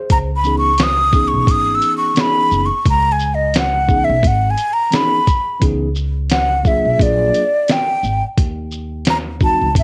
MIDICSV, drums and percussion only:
0, 0, Header, 1, 2, 480
1, 0, Start_track
1, 0, Tempo, 689655
1, 69, Time_signature, 4, 2, 24, 8
1, 6844, End_track
2, 0, Start_track
2, 0, Title_t, "Drums"
2, 69, Note_on_c, 9, 42, 82
2, 70, Note_on_c, 9, 36, 111
2, 139, Note_off_c, 9, 36, 0
2, 139, Note_off_c, 9, 42, 0
2, 307, Note_on_c, 9, 82, 60
2, 377, Note_off_c, 9, 82, 0
2, 542, Note_on_c, 9, 42, 79
2, 555, Note_on_c, 9, 38, 116
2, 611, Note_off_c, 9, 42, 0
2, 625, Note_off_c, 9, 38, 0
2, 784, Note_on_c, 9, 82, 48
2, 785, Note_on_c, 9, 36, 94
2, 854, Note_off_c, 9, 36, 0
2, 854, Note_off_c, 9, 82, 0
2, 1024, Note_on_c, 9, 36, 101
2, 1030, Note_on_c, 9, 42, 89
2, 1094, Note_off_c, 9, 36, 0
2, 1100, Note_off_c, 9, 42, 0
2, 1265, Note_on_c, 9, 42, 47
2, 1265, Note_on_c, 9, 82, 51
2, 1335, Note_off_c, 9, 42, 0
2, 1335, Note_off_c, 9, 82, 0
2, 1503, Note_on_c, 9, 42, 64
2, 1512, Note_on_c, 9, 38, 103
2, 1573, Note_off_c, 9, 42, 0
2, 1582, Note_off_c, 9, 38, 0
2, 1750, Note_on_c, 9, 82, 49
2, 1820, Note_off_c, 9, 82, 0
2, 1987, Note_on_c, 9, 36, 108
2, 1989, Note_on_c, 9, 42, 88
2, 2056, Note_off_c, 9, 36, 0
2, 2059, Note_off_c, 9, 42, 0
2, 2224, Note_on_c, 9, 82, 59
2, 2293, Note_off_c, 9, 82, 0
2, 2463, Note_on_c, 9, 42, 78
2, 2476, Note_on_c, 9, 38, 108
2, 2533, Note_off_c, 9, 42, 0
2, 2546, Note_off_c, 9, 38, 0
2, 2705, Note_on_c, 9, 36, 98
2, 2707, Note_on_c, 9, 82, 47
2, 2775, Note_off_c, 9, 36, 0
2, 2777, Note_off_c, 9, 82, 0
2, 2944, Note_on_c, 9, 36, 99
2, 2953, Note_on_c, 9, 42, 87
2, 3014, Note_off_c, 9, 36, 0
2, 3022, Note_off_c, 9, 42, 0
2, 3184, Note_on_c, 9, 42, 49
2, 3184, Note_on_c, 9, 82, 50
2, 3254, Note_off_c, 9, 42, 0
2, 3254, Note_off_c, 9, 82, 0
2, 3425, Note_on_c, 9, 42, 61
2, 3434, Note_on_c, 9, 38, 106
2, 3495, Note_off_c, 9, 42, 0
2, 3504, Note_off_c, 9, 38, 0
2, 3670, Note_on_c, 9, 36, 97
2, 3670, Note_on_c, 9, 42, 47
2, 3670, Note_on_c, 9, 82, 51
2, 3740, Note_off_c, 9, 36, 0
2, 3740, Note_off_c, 9, 42, 0
2, 3740, Note_off_c, 9, 82, 0
2, 3909, Note_on_c, 9, 36, 104
2, 3910, Note_on_c, 9, 42, 79
2, 3979, Note_off_c, 9, 36, 0
2, 3980, Note_off_c, 9, 42, 0
2, 4145, Note_on_c, 9, 82, 58
2, 4215, Note_off_c, 9, 82, 0
2, 4382, Note_on_c, 9, 42, 80
2, 4395, Note_on_c, 9, 38, 109
2, 4452, Note_off_c, 9, 42, 0
2, 4465, Note_off_c, 9, 38, 0
2, 4628, Note_on_c, 9, 36, 93
2, 4630, Note_on_c, 9, 82, 44
2, 4698, Note_off_c, 9, 36, 0
2, 4700, Note_off_c, 9, 82, 0
2, 4868, Note_on_c, 9, 36, 93
2, 4880, Note_on_c, 9, 42, 88
2, 4938, Note_off_c, 9, 36, 0
2, 4950, Note_off_c, 9, 42, 0
2, 5111, Note_on_c, 9, 42, 47
2, 5111, Note_on_c, 9, 82, 47
2, 5181, Note_off_c, 9, 42, 0
2, 5181, Note_off_c, 9, 82, 0
2, 5347, Note_on_c, 9, 42, 63
2, 5356, Note_on_c, 9, 38, 100
2, 5416, Note_off_c, 9, 42, 0
2, 5425, Note_off_c, 9, 38, 0
2, 5592, Note_on_c, 9, 82, 45
2, 5662, Note_off_c, 9, 82, 0
2, 5830, Note_on_c, 9, 36, 101
2, 5831, Note_on_c, 9, 42, 81
2, 5899, Note_off_c, 9, 36, 0
2, 5900, Note_off_c, 9, 42, 0
2, 6067, Note_on_c, 9, 82, 55
2, 6137, Note_off_c, 9, 82, 0
2, 6299, Note_on_c, 9, 42, 75
2, 6312, Note_on_c, 9, 38, 107
2, 6369, Note_off_c, 9, 42, 0
2, 6382, Note_off_c, 9, 38, 0
2, 6547, Note_on_c, 9, 36, 93
2, 6547, Note_on_c, 9, 82, 44
2, 6616, Note_off_c, 9, 36, 0
2, 6616, Note_off_c, 9, 82, 0
2, 6787, Note_on_c, 9, 36, 92
2, 6794, Note_on_c, 9, 42, 83
2, 6844, Note_off_c, 9, 36, 0
2, 6844, Note_off_c, 9, 42, 0
2, 6844, End_track
0, 0, End_of_file